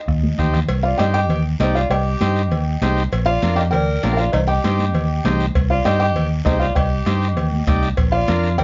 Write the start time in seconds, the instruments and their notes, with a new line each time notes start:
Already playing: felt piano D#5
0.08 fingered electric bass D#2, bombo low, bombo rim, high conga, long guiro
0.23 high conga
0.38 fingered electric bass D#2, transistor combo organ D#4 G4 C5, bombo low, bombo rim, low conga, short guiro
0.53 bombo rim, low conga, short guiro
0.68 fingered electric bass C2, cowbell, high conga, long guiro
0.83 clarinet F4, felt piano D5 F5
0.98 fingered electric bass G2, transistor combo organ D#4 G4 C5, clarinet G4, felt piano D#5 G5, cowbell, high conga, short guiro
1.14 clarinet G4, felt piano D#5 G5, short guiro
1.29 fingered electric bass D#2, cowbell, high conga, low conga, long guiro
1.59 fingered electric bass C2, clarinet D#4, transistor combo organ D#4 G4 D5, felt piano C5 D#5, cowbell, high conga, low timbale, short guiro
1.75 clarinet F4, felt piano D5 F5, short guiro
1.90 fingered electric bass C2, clarinet G4, felt piano D#5 G5, cowbell, high conga, long guiro
2.21 fingered electric bass G2, transistor combo organ D#4 G4 C5, cowbell, high conga, short guiro
2.36 short guiro
2.51 fingered electric bass D#2, cowbell, high conga, low conga, long guiro
2.82 fingered electric bass C2, transistor combo organ D#4 G4 C5, cowbell, high conga, low timbale, short guiro
2.97 short guiro
3.12 fingered electric bass A#1, cowbell, high conga, long guiro
3.26 clarinet F4, felt piano D5 F5
3.42 fingered electric bass F2, transistor combo organ D4 F4 A#4, cowbell, high conga, short guiro
3.56 clarinet G4, felt piano D#5 G5, short guiro
3.71 fingered electric bass D2, clarinet A#4, felt piano D5 G5, cowbell, high conga, low conga, long guiro
4.03 fingered electric bass A#1, transistor combo organ D4 F4 A#4, cowbell, high conga, low timbale, short guiro
4.13 clarinet A#4, felt piano F5 G5
4.18 clarinet F4, felt piano D5, short guiro
4.32 fingered electric bass C2, clarinet D#4, felt piano C5 D#5, cowbell, high conga, low conga, long guiro
4.48 clarinet G4, felt piano D#5 G5
4.64 fingered electric bass G2, transistor combo organ D#4 G4 C5, cowbell, high conga, short guiro
4.79 high conga, short guiro
4.95 fingered electric bass D#2, cowbell, high conga, low conga, long guiro
5.24 fingered electric bass C2, transistor combo organ D#4 G4 C5, cowbell, high conga, low conga, low timbale, short guiro
5.40 short guiro
5.55 fingered electric bass C2, bombo low, cowbell, high conga, long guiro
5.70 clarinet F4, felt piano D5 F5
5.85 fingered electric bass G2, transistor combo organ D#4 G4 C5, clarinet G4, felt piano D#5 G5, bombo rim, cowbell, high conga, short guiro
6.00 clarinet G4, felt piano D#5 G5, short guiro
6.16 fingered electric bass D#2, cowbell, high conga, low conga, long guiro
6.45 fingered electric bass C2, clarinet D#4, transistor combo organ D#4 G4 C5, felt piano C5 D#5, bombo low, bombo rim, cowbell, high conga, low timbale, short guiro
6.60 clarinet F4, felt piano D5 F5, short guiro
6.75 fingered electric bass C2, clarinet G4, felt piano D#5 G5, bombo low, cowbell, high conga, long guiro
7.06 fingered electric bass G2, transistor combo organ D#4 G4 C5, bombo rim, cowbell, high conga, short guiro
7.22 short guiro
7.36 fingered electric bass D#2, cowbell, high conga, low conga, long guiro
7.52 high conga
7.67 fingered electric bass C2, transistor combo organ D#4 G4 D5, bombo low, bombo rim, cowbell, high conga, short guiro
7.82 bombo rim, short guiro
7.97 fingered electric bass A#1, bombo low, cowbell, high conga, long guiro
8.11 clarinet F4, felt piano D5 F5
8.28 fingered electric bass F2, transistor combo organ D4 F4 A#4, bombo rim, cowbell, high conga, short guiro
8.44 short guiro
8.58 fingered electric bass D2, clarinet A#4, felt piano D5 G5, cowbell, high conga, low conga, long guiro